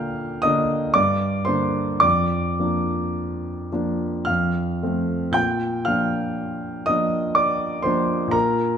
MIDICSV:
0, 0, Header, 1, 2, 480
1, 0, Start_track
1, 0, Key_signature, -2, "major"
1, 0, Tempo, 1047120
1, 933, Time_signature, 3, 2, 24, 8
1, 934, Tempo, 1138520
1, 1414, Tempo, 1098901
1, 2374, Tempo, 995025
1, 4015, End_track
2, 0, Start_track
2, 0, Title_t, "Grand piano"
2, 0, Program_c, 0, 0
2, 0, Control_c, 0, 64, 127
2, 0, Note_on_c, 0, 46, 66
2, 0, Note_on_c, 0, 50, 53
2, 0, Note_on_c, 0, 58, 51
2, 0, Note_on_c, 0, 62, 54
2, 0, Note_on_c, 0, 77, 77
2, 0, Note_on_c, 0, 79, 73
2, 0, Note_on_c, 0, 89, 104
2, 0, Note_on_c, 0, 91, 97
2, 182, Note_off_c, 0, 77, 0
2, 185, Note_off_c, 0, 50, 0
2, 185, Note_off_c, 0, 58, 0
2, 187, Note_off_c, 0, 62, 0
2, 192, Note_on_c, 0, 87, 99
2, 197, Note_off_c, 0, 89, 0
2, 198, Note_on_c, 0, 75, 75
2, 203, Note_on_c, 0, 50, 51
2, 204, Note_on_c, 0, 58, 53
2, 206, Note_on_c, 0, 62, 57
2, 422, Note_off_c, 0, 75, 0
2, 423, Note_off_c, 0, 50, 0
2, 424, Note_off_c, 0, 58, 0
2, 424, Note_off_c, 0, 62, 0
2, 429, Note_on_c, 0, 86, 92
2, 432, Note_on_c, 0, 74, 66
2, 436, Note_off_c, 0, 87, 0
2, 439, Note_on_c, 0, 43, 67
2, 452, Control_c, 0, 64, 0
2, 455, Note_off_c, 0, 46, 0
2, 456, Note_off_c, 0, 79, 0
2, 456, Note_off_c, 0, 91, 0
2, 514, Control_c, 0, 64, 127
2, 660, Note_off_c, 0, 74, 0
2, 664, Note_on_c, 0, 84, 82
2, 669, Note_on_c, 0, 72, 56
2, 672, Note_off_c, 0, 43, 0
2, 675, Note_off_c, 0, 86, 0
2, 675, Note_on_c, 0, 50, 46
2, 676, Note_on_c, 0, 58, 43
2, 681, Note_on_c, 0, 62, 48
2, 909, Note_off_c, 0, 72, 0
2, 911, Note_off_c, 0, 50, 0
2, 912, Note_off_c, 0, 58, 0
2, 914, Note_off_c, 0, 62, 0
2, 917, Note_on_c, 0, 86, 96
2, 920, Note_on_c, 0, 74, 65
2, 924, Note_off_c, 0, 84, 0
2, 927, Note_on_c, 0, 41, 62
2, 943, Control_c, 0, 64, 0
2, 1017, Control_c, 0, 64, 127
2, 1163, Note_off_c, 0, 41, 0
2, 1169, Note_on_c, 0, 58, 45
2, 1170, Note_on_c, 0, 53, 41
2, 1171, Note_on_c, 0, 62, 45
2, 1638, Note_off_c, 0, 53, 0
2, 1638, Note_off_c, 0, 58, 0
2, 1638, Note_off_c, 0, 62, 0
2, 1653, Note_on_c, 0, 53, 44
2, 1655, Note_on_c, 0, 58, 44
2, 1656, Note_on_c, 0, 62, 46
2, 1874, Note_off_c, 0, 74, 0
2, 1879, Note_off_c, 0, 53, 0
2, 1879, Note_off_c, 0, 58, 0
2, 1880, Note_off_c, 0, 62, 0
2, 1882, Note_on_c, 0, 89, 81
2, 1890, Note_off_c, 0, 86, 0
2, 1891, Note_on_c, 0, 77, 63
2, 1896, Note_on_c, 0, 41, 55
2, 1905, Control_c, 0, 64, 0
2, 1990, Control_c, 0, 64, 127
2, 2131, Note_off_c, 0, 41, 0
2, 2136, Note_on_c, 0, 57, 42
2, 2138, Note_on_c, 0, 53, 39
2, 2138, Note_on_c, 0, 60, 46
2, 2348, Note_on_c, 0, 46, 61
2, 2352, Note_off_c, 0, 77, 0
2, 2354, Note_off_c, 0, 57, 0
2, 2354, Note_on_c, 0, 91, 89
2, 2355, Note_off_c, 0, 53, 0
2, 2355, Note_off_c, 0, 60, 0
2, 2360, Note_on_c, 0, 79, 68
2, 2366, Note_off_c, 0, 89, 0
2, 2381, Control_c, 0, 64, 0
2, 2469, Control_c, 0, 64, 127
2, 2596, Note_off_c, 0, 79, 0
2, 2599, Note_off_c, 0, 46, 0
2, 2603, Note_on_c, 0, 89, 82
2, 2606, Note_on_c, 0, 77, 61
2, 2610, Note_off_c, 0, 91, 0
2, 2614, Note_on_c, 0, 53, 40
2, 2618, Note_on_c, 0, 58, 39
2, 2619, Note_on_c, 0, 62, 44
2, 3075, Note_off_c, 0, 77, 0
2, 3079, Note_off_c, 0, 53, 0
2, 3081, Note_off_c, 0, 58, 0
2, 3082, Note_off_c, 0, 62, 0
2, 3090, Note_on_c, 0, 87, 87
2, 3093, Note_off_c, 0, 89, 0
2, 3093, Note_on_c, 0, 75, 67
2, 3102, Note_on_c, 0, 53, 45
2, 3104, Note_on_c, 0, 58, 45
2, 3105, Note_on_c, 0, 62, 46
2, 3315, Note_off_c, 0, 75, 0
2, 3327, Note_on_c, 0, 86, 85
2, 3329, Note_on_c, 0, 74, 66
2, 3331, Note_off_c, 0, 87, 0
2, 3548, Note_off_c, 0, 74, 0
2, 3549, Note_off_c, 0, 53, 0
2, 3550, Note_off_c, 0, 58, 0
2, 3551, Note_off_c, 0, 62, 0
2, 3556, Note_on_c, 0, 84, 80
2, 3563, Note_on_c, 0, 72, 63
2, 3564, Note_off_c, 0, 86, 0
2, 3569, Note_on_c, 0, 53, 42
2, 3572, Note_on_c, 0, 58, 45
2, 3572, Note_on_c, 0, 62, 52
2, 3774, Note_on_c, 0, 46, 67
2, 3785, Note_off_c, 0, 53, 0
2, 3785, Note_off_c, 0, 72, 0
2, 3787, Note_off_c, 0, 58, 0
2, 3787, Note_off_c, 0, 62, 0
2, 3792, Note_on_c, 0, 82, 90
2, 3798, Note_off_c, 0, 84, 0
2, 3798, Note_on_c, 0, 70, 69
2, 3813, Control_c, 0, 64, 0
2, 3910, Control_c, 0, 64, 127
2, 4015, Note_off_c, 0, 46, 0
2, 4015, Note_off_c, 0, 70, 0
2, 4015, Note_off_c, 0, 82, 0
2, 4015, End_track
0, 0, End_of_file